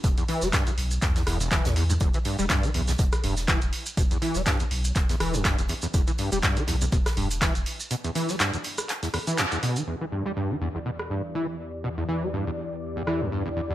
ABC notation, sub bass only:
X:1
M:4/4
L:1/16
Q:"Swing 16ths" 1/4=122
K:Em
V:1 name="Sub bass" clef=bass
E,,, z2 E,,, z2 B,,,2 E,,2 E,,,3 E,,3 | E,,, z2 E,,, z2 B,,,2 E,,, z E,,,3 E,,, z2 | E,,, z2 E,,, z2 B,,,2 E,,, z E,,,3 E,,, z2 | E,,, z2 E,,, z2 B,,,2 E,,, z E,,,3 E,,, z2 |
z16 | z16 | z16 |]